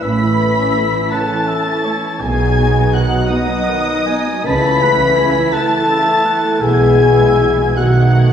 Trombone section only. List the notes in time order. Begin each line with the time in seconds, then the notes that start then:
0.01 E3 C#4
2.22 F#3 B3
4.47 E3 A3
5.55 E3 A3
6.62 E3 B3
7.77 D#3 A3